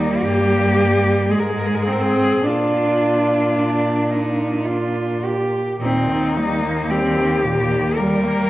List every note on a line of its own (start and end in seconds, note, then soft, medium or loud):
0.00 0.21 D#2 medium
0.00 1.31 G3 medium
0.00 1.30 A#3 medium
0.00 0.24 D#4 loud
0.23 1.33 G2 medium
0.23 1.33 G4 loud
1.29 2.43 G#2 medium
1.29 1.88 G#3 medium
1.29 1.89 G#3 medium
1.29 1.41 G#4 medium
1.39 1.50 A#4 medium
1.49 1.60 G#4 medium
1.59 1.67 A#4 medium
1.66 1.76 G#4 medium
1.75 1.84 A#4 medium
1.83 2.44 C4 medium
1.83 1.94 G#4 medium
1.88 2.45 C4 medium
1.92 2.02 A#4 medium
2.01 2.47 G#4 loud
2.43 5.56 A#2 medium
2.43 3.43 D4 medium
2.43 5.24 D4 medium
2.43 4.68 F4 medium
3.55 4.12 D4 medium
4.10 4.67 D#4 medium
4.65 5.26 F4 medium
5.24 5.80 G4 medium
5.81 8.50 D#2 medium
5.81 6.10 A#2 medium
5.81 6.38 C4 medium
5.81 6.92 D#4 loud
6.09 6.38 D#3 medium
6.36 6.65 G3 medium
6.36 6.92 A#3 medium
6.63 6.92 A#3 medium
6.90 7.20 G3 medium
6.90 7.44 C4 medium
6.90 7.98 G4 loud
7.18 7.47 D#3 medium
7.44 7.73 A#2 medium
7.44 7.99 A#3 medium
7.72 8.00 D#3 medium
7.97 8.50 G3 medium
7.97 8.26 G3 medium
7.97 8.50 A#4 medium
8.25 8.50 A#3 medium